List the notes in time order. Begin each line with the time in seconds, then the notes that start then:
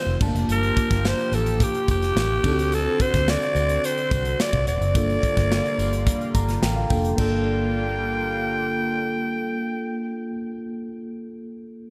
Already playing: D#3 A3 C4 D#4 F4 G4 C5
0.06 F1
0.20 G1 F3 A3 A#3 D4 F4 G4 A5, kick, tambourine, crash
0.27 A#3
0.35 F1, closed hi-hat
0.48 G1 A#4, closed hi-hat, tambourine
0.63 closed hi-hat
0.77 kick, closed hi-hat, tambourine
0.91 G1, kick, snare, closed hi-hat
1.05 C5, snare, tambourine
1.19 closed hi-hat
1.32 A1 A4, closed hi-hat, tambourine
1.46 closed hi-hat
1.60 G4, kick, closed hi-hat, tambourine
1.74 closed hi-hat
1.88 F1 G4, kick, closed hi-hat, tambourine
2.02 snare, closed hi-hat
2.16 A1, snare, tambourine
2.43 D2 D3 C4 D4 D#4 F#4 A4, kick, tambourine, crash
2.51 F#4
2.59 closed hi-hat
2.72 A4, closed hi-hat, tambourine
3.00 C5, kick, closed hi-hat, tambourine
3.14 D2, kick, snare, closed hi-hat
3.28 D5, snare, tambourine
3.42 closed hi-hat
3.55 D2, closed hi-hat, tambourine
3.69 closed hi-hat
3.84 C5, closed hi-hat, tambourine
3.98 closed hi-hat
4.11 C2, kick, closed hi-hat, tambourine
4.25 closed hi-hat
4.40 D5, snare, tambourine
4.53 C2, kick, closed hi-hat
4.67 D#1 D5, closed hi-hat, tambourine
4.81 F#1, closed hi-hat
4.94 G1 D3 G3 A#3 D4 F4 A4, kick, closed hi-hat, tambourine
5.10 closed hi-hat
5.23 kick, closed hi-hat
5.37 G1, kick, snare, closed hi-hat
5.51 snare, tambourine
5.66 closed hi-hat
5.78 G1, closed hi-hat, tambourine
5.93 closed hi-hat
6.07 kick, closed hi-hat
6.21 closed hi-hat
6.34 G1 A#5, kick, closed hi-hat, tambourine
6.49 snare, closed hi-hat
6.62 A1 G5, snare, tambourine
6.76 F5
6.90 F1 A#3 D4 F4 A4 G5, kick, open hi-hat, tambourine
7.05 closed hi-hat
7.16 G1 D3 G3 A#3 D4 F4 G5, kick, crash, tambourine
7.21 A4